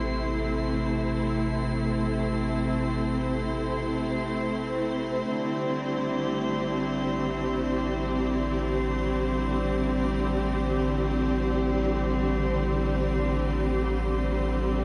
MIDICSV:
0, 0, Header, 1, 5, 480
1, 0, Start_track
1, 0, Tempo, 500000
1, 14251, End_track
2, 0, Start_track
2, 0, Title_t, "Synth texture"
2, 0, Program_c, 0, 99
2, 0, Note_on_c, 0, 84, 68
2, 14251, Note_off_c, 0, 84, 0
2, 14251, End_track
3, 0, Start_track
3, 0, Title_t, "Synth drone"
3, 0, Program_c, 1, 95
3, 0, Note_on_c, 1, 57, 74
3, 0, Note_on_c, 1, 64, 71
3, 14251, Note_off_c, 1, 57, 0
3, 14251, Note_off_c, 1, 64, 0
3, 14251, End_track
4, 0, Start_track
4, 0, Title_t, "String section"
4, 0, Program_c, 2, 48
4, 0, Note_on_c, 2, 48, 60
4, 0, Note_on_c, 2, 57, 50
4, 0, Note_on_c, 2, 60, 65
4, 0, Note_on_c, 2, 64, 55
4, 0, Note_on_c, 2, 72, 60
4, 5070, Note_off_c, 2, 57, 0
4, 5076, Note_off_c, 2, 48, 0
4, 5080, Note_on_c, 2, 50, 67
4, 5146, Note_on_c, 2, 55, 62
4, 5613, Note_on_c, 2, 67, 61
4, 8178, Note_off_c, 2, 64, 0
4, 14251, Note_off_c, 2, 50, 0
4, 14251, Note_off_c, 2, 55, 0
4, 14251, Note_off_c, 2, 60, 0
4, 14251, Note_off_c, 2, 67, 0
4, 14251, Note_off_c, 2, 72, 0
4, 14251, End_track
5, 0, Start_track
5, 0, Title_t, "Analog synth bass"
5, 0, Program_c, 3, 38
5, 0, Note_on_c, 3, 33, 71
5, 5028, Note_off_c, 3, 33, 0
5, 5076, Note_on_c, 3, 33, 73
5, 14251, Note_off_c, 3, 33, 0
5, 14251, End_track
0, 0, End_of_file